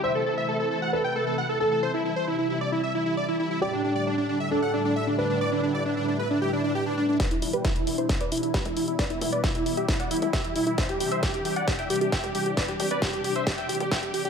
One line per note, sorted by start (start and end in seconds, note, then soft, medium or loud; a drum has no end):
0.00 3.58 C3 medium
0.00 3.58 E3 medium
0.00 1.81 A3 medium
0.00 3.58 E4 medium
0.00 0.84 C5 medium
0.00 0.13 E5 loud
0.15 0.24 A4 medium
0.26 0.35 A4 medium
0.37 0.46 E5 medium
0.49 0.57 A4 medium
0.60 0.69 A4 medium
0.71 0.80 A4 medium
0.82 0.91 F#5 medium
0.93 1.02 A4 medium
0.93 1.51 B4 medium
1.04 1.13 G5 medium
1.16 1.25 A4 medium
1.27 1.36 A4 medium
1.38 1.47 F#5 medium
1.49 1.58 A4 medium
1.60 3.53 A4 medium
1.60 1.69 A4 medium
1.71 1.80 A4 medium
1.83 7.16 G3 medium
1.83 1.92 C5 loud
1.94 2.03 E4 medium
2.05 2.14 E4 medium
2.16 2.25 C5 medium
2.27 2.36 E4 medium
2.38 2.48 E4 medium
2.50 2.59 E4 medium
2.61 2.70 D5 medium
2.72 2.81 E4 medium
2.83 2.92 E5 medium
2.95 3.04 E4 medium
3.06 3.15 E4 medium
3.17 3.26 D5 medium
3.28 3.37 E4 medium
3.40 3.48 E4 medium
3.51 3.60 E4 medium
3.62 7.16 A2 medium
3.62 7.16 D3 medium
3.62 5.39 D4 loud
3.62 4.42 G4 medium
3.62 3.71 D5 loud
3.73 3.82 D4 medium
3.84 3.93 D4 medium
3.95 4.04 D5 medium
4.07 4.16 D4 medium
4.18 4.27 D4 medium
4.29 4.38 D4 medium
4.40 4.49 E5 medium
4.51 4.60 D4 medium
4.51 5.09 A4 medium
4.62 4.71 F#5 medium
4.74 4.83 D4 medium
4.85 4.94 D4 medium
4.96 5.05 E5 medium
5.07 5.16 D4 medium
5.18 5.28 D4 medium
5.18 7.11 B4 medium
5.30 5.39 D4 medium
5.41 7.18 E4 medium
5.41 5.50 D5 loud
5.52 5.61 D4 medium
5.63 5.72 D4 medium
5.74 5.83 D5 medium
5.86 5.95 D4 medium
5.97 6.06 D4 medium
6.08 6.17 D4 medium
6.19 6.28 B4 medium
6.31 6.39 D4 medium
6.42 6.51 G4 medium
6.53 6.62 D4 medium
6.64 6.73 D4 medium
6.75 6.84 G4 medium
6.86 6.95 D4 medium
6.98 7.07 D4 medium
7.09 7.18 D4 medium
7.20 10.75 B2 medium
7.20 14.30 E3 medium
7.20 14.30 G3 medium
7.20 8.97 D4 medium
7.20 7.29 G4 medium
7.20 7.29 B4 loud
7.20 7.29 B4 medium
7.20 kick loud
7.20 snare soft
7.20 closed hi-hat medium
7.31 7.40 E4 medium
7.31 closed hi-hat medium
7.42 7.51 E4 medium
7.42 open hi-hat loud
7.53 7.63 G4 medium
7.53 7.62 B4 medium
7.53 7.63 B4 medium
7.53 closed hi-hat medium
7.65 7.74 E4 medium
7.65 kick loud
7.65 snare soft
7.65 closed hi-hat medium
7.76 7.85 E4 medium
7.76 closed hi-hat medium
7.87 7.96 E4 medium
7.87 open hi-hat medium
7.98 8.07 E4 medium
7.98 8.07 C5 medium
7.98 closed hi-hat medium
8.09 8.18 E4 medium
8.09 8.19 E4 medium
8.09 kick loud
8.09 snare medium
8.09 closed hi-hat medium
8.21 8.30 B4 medium
8.21 8.30 D5 medium
8.21 closed hi-hat medium
8.32 8.41 E4 medium
8.32 open hi-hat loud
8.37 closed hi-hat medium
8.43 8.52 E4 medium
8.43 closed hi-hat medium
8.54 8.63 G4 medium
8.54 8.63 B4 medium
8.54 kick loud
8.54 snare soft
8.54 closed hi-hat medium
8.65 8.74 E4 medium
8.65 8.75 E4 medium
8.65 closed hi-hat medium
8.65 high conga medium
8.77 8.86 E4 medium
8.77 open hi-hat medium
8.88 8.97 E4 medium
8.88 closed hi-hat medium
8.99 10.76 E4 medium
8.99 9.08 B4 medium
8.99 9.08 D5 loud
8.99 kick loud
8.99 snare medium
8.99 closed hi-hat medium
9.10 9.19 E4 medium
9.10 closed hi-hat soft
9.21 9.30 E4 medium
9.21 open hi-hat loud
9.21 high conga medium
9.32 9.42 B4 medium
9.32 9.42 D5 loud
9.32 9.42 D5 medium
9.32 closed hi-hat medium
9.44 9.53 E4 medium
9.44 kick loud
9.44 snare medium
9.44 closed hi-hat medium
9.55 9.64 E4 medium
9.55 closed hi-hat medium
9.66 9.75 E4 medium
9.66 open hi-hat medium
9.77 9.86 G4 medium
9.77 9.86 E5 medium
9.77 closed hi-hat medium
9.88 9.97 E4 medium
9.88 9.98 E4 medium
9.88 kick loud
9.88 snare medium
9.88 closed hi-hat medium
9.99 10.09 D5 medium
9.99 10.09 F#5 medium
9.99 closed hi-hat medium
10.11 10.20 E4 medium
10.11 open hi-hat loud
10.17 closed hi-hat medium
10.22 10.31 E4 medium
10.22 closed hi-hat medium
10.22 high conga medium
10.33 10.42 G4 medium
10.33 10.42 E5 medium
10.33 10.42 E5 loud
10.33 kick loud
10.33 snare medium
10.33 closed hi-hat medium
10.44 10.54 E4 medium
10.44 closed hi-hat medium
10.56 10.65 E4 medium
10.56 open hi-hat medium
10.67 10.76 E4 medium
10.67 closed hi-hat medium
10.78 14.30 C3 medium
10.78 14.30 D4 loud
10.78 10.87 C5 medium
10.78 10.87 E5 loud
10.78 kick loud
10.78 snare medium
10.78 closed hi-hat medium
10.89 10.98 G4 medium
10.89 closed hi-hat soft
11.00 11.09 G4 medium
11.00 11.10 G4 medium
11.00 open hi-hat loud
11.12 11.21 C5 medium
11.12 11.21 E5 loud
11.12 11.21 E5 medium
11.12 closed hi-hat medium
11.23 11.32 G4 medium
11.23 kick loud
11.23 snare medium
11.23 closed hi-hat medium
11.34 11.43 G4 medium
11.34 closed hi-hat medium
11.45 11.54 G4 medium
11.45 open hi-hat medium
11.56 11.66 D5 medium
11.56 11.65 F#5 medium
11.56 11.66 F#5 medium
11.56 closed hi-hat soft
11.68 11.77 G4 medium
11.68 kick loud
11.68 snare medium
11.68 closed hi-hat medium
11.79 11.88 E5 medium
11.79 11.88 G5 medium
11.79 closed hi-hat soft
11.90 11.99 G4 medium
11.90 open hi-hat loud
11.96 closed hi-hat medium
12.01 12.10 G4 medium
12.01 closed hi-hat medium
12.12 12.22 E5 medium
12.12 12.22 G5 medium
12.12 kick loud
12.12 snare medium
12.12 closed hi-hat medium
12.24 12.33 G4 medium
12.24 closed hi-hat medium
12.24 high conga medium
12.35 12.44 G4 medium
12.35 open hi-hat loud
12.46 12.55 G4 medium
12.46 closed hi-hat medium
12.57 12.66 B4 medium
12.57 12.66 D5 loud
12.57 kick loud
12.57 snare medium
12.57 closed hi-hat medium
12.68 12.77 G4 medium
12.68 12.78 G4 medium
12.68 closed hi-hat soft
12.80 12.89 G4 medium
12.80 open hi-hat loud
12.80 high conga medium
12.91 13.00 B4 medium
12.91 13.00 D5 medium
12.91 closed hi-hat medium
13.02 13.11 G4 medium
13.02 kick loud
13.02 snare medium
13.02 closed hi-hat medium
13.13 13.22 G4 medium
13.13 closed hi-hat soft
13.24 13.33 G4 medium
13.24 13.34 G4 medium
13.24 open hi-hat medium
13.36 13.45 C5 medium
13.36 13.45 E5 medium
13.36 closed hi-hat medium
13.47 13.56 G4 medium
13.47 kick loud
13.47 snare medium
13.47 closed hi-hat medium
13.58 13.67 E5 medium
13.58 13.67 G5 medium
13.58 closed hi-hat soft
13.69 13.78 G4 medium
13.69 open hi-hat loud
13.75 closed hi-hat medium
13.80 13.89 G4 medium
13.80 closed hi-hat medium
13.80 high conga medium
13.91 14.00 E5 medium
13.91 14.00 G5 medium
13.91 14.01 G5 loud
13.91 kick loud
13.91 snare medium
13.91 closed hi-hat medium
14.02 14.12 G4 medium
14.02 closed hi-hat soft
14.14 14.23 G4 medium
14.14 open hi-hat medium
14.25 14.30 G4 medium
14.25 closed hi-hat soft